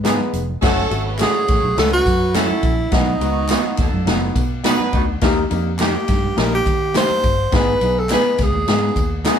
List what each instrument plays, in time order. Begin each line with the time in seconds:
Already playing: fingered electric bass G#2, horn section G#3 D#4 B4
0.04 grand piano G#3 B3 D#4 B4, clean electric guitar B3 D#4 G#4, snare, clap, closed hi-hat, tambourine, high conga
0.19 high conga
0.33 fingered electric bass F1, closed hi-hat, tambourine
0.49 high conga
0.62 fingered electric bass F#1, horn section F#3 C#4 A4, grand piano A3 C#4 F#4, kick, snare, crash, tambourine, muted conga
0.90 fingered electric bass G#1, grand piano A3 C#4 F#4, ride, tambourine, muted conga
1.06 horn section B3 G#4 B4
1.18 grand piano A3 C#4 F#4, clean electric guitar A3 C#4 F#4, horn section A3 F#4 C#5, tenor saxophone G#4, snare, clap, ride, tambourine, high conga
1.48 fingered electric bass A1, horn section A3 F#4 C#5, kick, snare, ride, tambourine, low conga
1.63 fingered electric bass B1, low conga
1.76 fingered electric bass C#2, horn section F#3 C#4 B4, grand piano A3 C#4 F#4, tenor saxophone A4, snare, ride, tambourine, muted conga
1.93 tenor saxophone F#4
2.06 fingered electric bass F#2, kick, ride, tambourine, muted conga
2.34 horn section F#3 C#4 A4, clean electric guitar A3 C#4 F#4, grand piano A3 C#4 F#4, tenor saxophone E4, snare, clap, ride, tambourine, high conga
2.50 high conga
2.63 fingered electric bass A#1, kick, ride, tambourine
2.91 fingered electric bass B1, grand piano B3 D#4 F#4, tenor saxophone D#4, kick, snare, ride, tambourine, muted conga
3.20 fingered electric bass C#2, horn section D#3 B3 F#4, grand piano B3 D#4 F#4, ride, tambourine, muted conga
3.48 clean electric guitar B3 D#4 F#4, grand piano B3 D#4 F#4, snare, clap, ride, tambourine, high conga
3.77 fingered electric bass D#2, horn section F#3 D#4 A4, kick, snare, ride, tambourine, low conga
3.93 fingered electric bass F#2, low conga
4.05 fingered electric bass F#1, grand piano B3 D#4 F#4, snare, ride, tambourine, muted conga
4.36 fingered electric bass B2, kick, ride, tambourine, muted conga
4.63 horn section F#3 D#4 B4, grand piano B3 D#4 F#4, clean electric guitar B3 D#4 F#4, snare, clap, ride, tambourine, high conga
4.79 high conga
4.93 fingered electric bass D2, clean electric guitar B3 D#4 F#4, kick, ride, tambourine
5.21 fingered electric bass D#2, grand piano A#3 D#4 G4, kick, snare, ride, tambourine, muted conga
5.50 fingered electric bass F2, grand piano A#3 D#4 G4, ride, tambourine, muted conga
5.79 clean electric guitar A#3 D#4 G4, grand piano A#3 D#4 G4, tenor saxophone G4, snare, clap, ride, tambourine, high conga
6.08 fingered electric bass G2, kick, snare, ride, tambourine, low conga
6.24 low conga
6.37 fingered electric bass A#1, grand piano A#3 D#4 G4, tenor saxophone A#4, snare, ride, tambourine, muted conga
6.55 tenor saxophone G4
6.66 fingered electric bass D#3, kick, ride, tambourine, muted conga
6.94 grand piano A#3 D#4 G4, clean electric guitar A#3 D#4 G4, tenor saxophone C5, snare, clap, ride, tambourine, high conga
7.10 high conga
7.23 fingered electric bass G1, kick, ride, tambourine
7.52 fingered electric bass G#1, grand piano B3 D#4 G#4, tenor saxophone B4, kick, snare, ride, muted conga
7.81 fingered electric bass B1, grand piano B3 D#4 G#4, ride, tambourine, muted conga
7.99 tenor saxophone A4
8.09 clean electric guitar B3 D#4 G#4, grand piano B3 D#4 G#4, tenor saxophone B4, snare, clap, ride, tambourine, high conga
8.38 fingered electric bass C#2, kick, snare, ride, tambourine, low conga
8.43 tenor saxophone G#4
8.52 fingered electric bass D#2, low conga
8.67 fingered electric bass G#2, grand piano B3 D#4 G#4, snare, ride, tambourine, muted conga
8.96 fingered electric bass D#2, kick, ride, tambourine, muted conga
9.24 clean electric guitar B3 D#4 G#4, grand piano B3 D#4 G#4, snare, clap, ride, tambourine, high conga